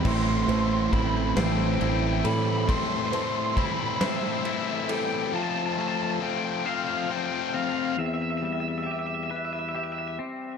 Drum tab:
CC |x-----|------|------|------|
RD |-xxxxx|xxxxxx|------|------|
SD |---o--|---o--|------|------|
BD |o-o---|o-o---|------|------|